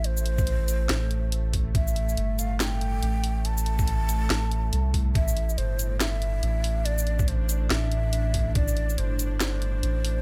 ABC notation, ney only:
X:1
M:4/4
L:1/8
Q:"Swing 16ths" 1/4=141
K:Am
V:1 name="Ney"
c6- c z | e3 f g4 | a6- a z | e2 c2 e4 |
d2 c2 e4 | d2 c2 c4 |]